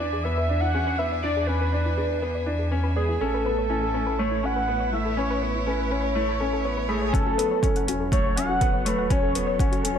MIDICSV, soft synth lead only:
0, 0, Header, 1, 2, 480
1, 0, Start_track
1, 0, Key_signature, 3, "minor"
1, 0, Tempo, 491803
1, 1210, Time_signature, 4, 2, 24, 8
1, 9747, End_track
2, 0, Start_track
2, 0, Title_t, "Soft synth lead"
2, 0, Program_c, 0, 80
2, 0, Note_on_c, 0, 74, 88
2, 229, Note_on_c, 0, 76, 94
2, 243, Note_off_c, 0, 74, 0
2, 590, Note_on_c, 0, 78, 109
2, 605, Note_off_c, 0, 76, 0
2, 959, Note_on_c, 0, 76, 95
2, 974, Note_off_c, 0, 78, 0
2, 1190, Note_off_c, 0, 76, 0
2, 1196, Note_on_c, 0, 74, 90
2, 1433, Note_on_c, 0, 71, 78
2, 1448, Note_off_c, 0, 74, 0
2, 2402, Note_off_c, 0, 71, 0
2, 2887, Note_on_c, 0, 68, 80
2, 3132, Note_on_c, 0, 69, 95
2, 3147, Note_off_c, 0, 68, 0
2, 4104, Note_on_c, 0, 73, 91
2, 4119, Note_off_c, 0, 69, 0
2, 4344, Note_on_c, 0, 78, 103
2, 4358, Note_off_c, 0, 73, 0
2, 4822, Note_on_c, 0, 76, 96
2, 4837, Note_off_c, 0, 78, 0
2, 5052, Note_on_c, 0, 73, 90
2, 5067, Note_off_c, 0, 76, 0
2, 5539, Note_on_c, 0, 71, 79
2, 5553, Note_off_c, 0, 73, 0
2, 5777, Note_on_c, 0, 73, 86
2, 5792, Note_off_c, 0, 71, 0
2, 6716, Note_off_c, 0, 73, 0
2, 6722, Note_on_c, 0, 68, 93
2, 6965, Note_on_c, 0, 69, 107
2, 6979, Note_off_c, 0, 68, 0
2, 7687, Note_off_c, 0, 69, 0
2, 7934, Note_on_c, 0, 73, 92
2, 8170, Note_on_c, 0, 78, 106
2, 8184, Note_off_c, 0, 73, 0
2, 8665, Note_on_c, 0, 71, 86
2, 8679, Note_off_c, 0, 78, 0
2, 8905, Note_on_c, 0, 73, 87
2, 8920, Note_off_c, 0, 71, 0
2, 9618, Note_off_c, 0, 73, 0
2, 9747, End_track
0, 0, End_of_file